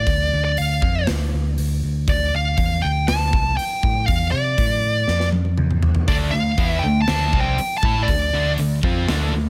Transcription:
Already playing: D5
0.07 D2, kick, open hi-hat
0.34 D2
0.45 D5
0.57 D2 F5, open hi-hat
0.82 F2, kick
1.07 D2, snare, open hi-hat
1.33 D2
1.58 D2, open hi-hat
1.83 D2
2.08 D2 D5, kick, open hi-hat
2.34 D2 F5
2.58 E2, kick, open hi-hat
2.82 D2 G5
3.08 D2 A5, snare, open hi-hat
3.33 C2, kick
3.57 G5, muted picked electric bass stroke, open hi-hat
3.83 A2, kick
4.06 E2 F5, kick, open hi-hat
4.32 C3 D5
4.58 A2, kick, open hi-hat
5.08 F2, snare
5.20 snare
5.32 high tom
5.45 high tom
5.58 E2, mid tom
5.71 mid tom
5.83 floor tom
5.95 floor tom
6.08 D2 D3 A3 D4 D5, kick, open hi-hat
6.31 D2 D3 A3 F5
6.58 E2 E3 B3 E4, kick, open hi-hat
6.70 E5
6.79 G5
6.83 D2 D3 A3
7.02 A5
7.08 D2 D3 A3 D4, snare, open hi-hat
7.33 C2 C3 G3 C4, kick
7.41 G5
7.58 muted distorted electric guitar stroke, muted picked electric bass stroke, open hi-hat
7.78 A5
7.83 A2 A3 E4 A4, kick
8.03 D5
8.08 D2 D3 A3, kick, open hi-hat
8.33 D2 D3 A3 D4
8.58 D2 D3 A3, open hi-hat
8.83 F2 F3 C4 F4, kick
9.08 D2 D3 A3 D4, snare, open hi-hat
9.32 D2 D3 A3

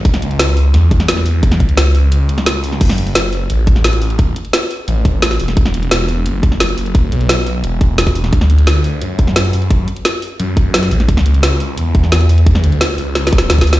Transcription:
0.05 C#2, kick, closed hi-hat
0.14 snare, closed hi-hat
0.22 C#2, closed hi-hat
0.31 closed hi-hat
0.39 snare, closed hi-hat
0.48 closed hi-hat
0.57 open hi-hat
0.74 E2, snare, closed hi-hat
0.91 kick, closed hi-hat
1.00 snare, closed hi-hat
1.08 snare, closed hi-hat
1.17 snare
1.26 E2, open hi-hat
1.43 kick, closed hi-hat
1.52 snare, closed hi-hat
1.60 C#2, kick, closed hi-hat
1.69 closed hi-hat
1.77 snare, closed hi-hat
1.86 closed hi-hat
1.95 open hi-hat
2.12 C#2, closed hi-hat
2.29 closed hi-hat
2.38 snare, closed hi-hat
2.46 C#2, snare, closed hi-hat
2.64 open hi-hat
2.72 snare
2.81 F#1, kick, closed hi-hat, crash
2.90 snare
2.98 F#1, closed hi-hat
3.07 closed hi-hat
3.15 snare, closed hi-hat
3.33 open hi-hat
3.50 A1, closed hi-hat
3.67 kick, closed hi-hat
3.76 snare
3.84 snare, closed hi-hat
3.93 closed hi-hat
4.02 A1, open hi-hat
4.10 closed hi-hat
4.19 kick, closed hi-hat
4.36 closed hi-hat
4.45 closed hi-hat
4.53 snare, closed hi-hat
4.71 open hi-hat
4.88 A1, closed hi-hat
5.05 kick, closed hi-hat
5.22 snare, closed hi-hat
5.31 snare, closed hi-hat
5.39 E1, open hi-hat
5.48 snare, closed hi-hat
5.57 E1, kick, closed hi-hat
5.65 snare
5.74 E1, closed hi-hat
5.83 closed hi-hat
5.91 snare, closed hi-hat
6.09 open hi-hat
6.26 F#1, closed hi-hat
6.43 kick, closed hi-hat
6.52 snare
6.60 snare, closed hi-hat
6.69 closed hi-hat
6.77 F#1, open hi-hat
6.86 closed hi-hat
6.95 kick, closed hi-hat
7.12 B1, closed hi-hat
7.21 closed hi-hat
7.29 snare, closed hi-hat
7.47 open hi-hat
7.64 E1, closed hi-hat
7.81 kick, closed hi-hat
7.98 snare, closed hi-hat
8.07 kick, snare, closed hi-hat
8.15 open hi-hat
8.24 snare, closed hi-hat
8.33 D2, kick, closed hi-hat
8.41 snare
8.50 D2, closed hi-hat
8.58 closed hi-hat
8.67 snare, closed hi-hat
8.84 open hi-hat
9.02 F#2, closed hi-hat
9.19 kick, closed hi-hat
9.27 snare
9.36 snare, closed hi-hat
9.45 closed hi-hat
9.53 F#2, open hi-hat
9.62 closed hi-hat
9.70 kick, closed hi-hat
9.88 closed hi-hat
9.96 closed hi-hat
10.05 snare, closed hi-hat
10.22 open hi-hat
10.40 F#2, closed hi-hat
10.57 kick, closed hi-hat
10.74 snare, closed hi-hat
10.83 snare, closed hi-hat
10.91 A1, open hi-hat
11.00 snare, closed hi-hat
11.08 C#2, kick, closed hi-hat
11.17 snare
11.26 C#2, closed hi-hat
11.34 closed hi-hat
11.43 snare, closed hi-hat
11.60 open hi-hat
11.78 E2, closed hi-hat
11.95 kick, closed hi-hat
12.03 snare
12.12 snare, closed hi-hat
12.21 closed hi-hat
12.29 E2, open hi-hat
12.38 closed hi-hat
12.46 kick, closed hi-hat
12.55 snare
12.64 D2, closed hi-hat
12.72 closed hi-hat
12.81 snare, closed hi-hat
12.98 C#2, open hi-hat
13.15 snare, closed hi-hat
13.27 snare
13.33 kick, closed hi-hat
13.38 snare
13.50 D2, snare, closed hi-hat
13.58 kick, snare, closed hi-hat
13.67 open hi-hat
13.73 snare, closed hi-hat

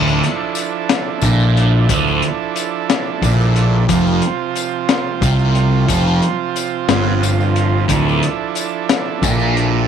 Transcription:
Already playing: D1 D2 F3 D4 E4 A4
0.07 tambourine
0.23 closed hi-hat
0.55 closed hi-hat, tambourine
0.89 snare, closed hi-hat
1.21 A#1 A#2, kick, closed hi-hat, tambourine
1.40 tambourine
1.57 closed hi-hat
1.89 D1 D2, kick, closed hi-hat, tambourine
2.07 tambourine
2.22 closed hi-hat
2.56 closed hi-hat, tambourine
2.90 snare, closed hi-hat
3.22 A#1 A#2, kick, closed hi-hat, tambourine
3.41 tambourine
3.56 closed hi-hat
3.89 F1 F2 C3 F3 F4 C5, kick, closed hi-hat, tambourine
4.07 tambourine
4.22 closed hi-hat
4.56 closed hi-hat, tambourine
4.89 snare, closed hi-hat
5.21 C2 C3, kick, closed hi-hat, tambourine
5.39 tambourine
5.55 closed hi-hat
5.88 F1 F2, kick, closed hi-hat, tambourine
6.07 tambourine
6.22 closed hi-hat
6.56 closed hi-hat, tambourine
6.89 G1 G2, snare, closed hi-hat, tambourine
7.23 closed hi-hat, tambourine
7.41 tambourine
7.56 closed hi-hat
7.88 D1 D2 D4 E4 A4, kick, closed hi-hat, tambourine
8.09 tambourine
8.23 closed hi-hat
8.55 closed hi-hat, tambourine
8.89 snare, closed hi-hat
9.22 A#1 A#2, kick, closed hi-hat, tambourine
9.40 tambourine
9.57 closed hi-hat

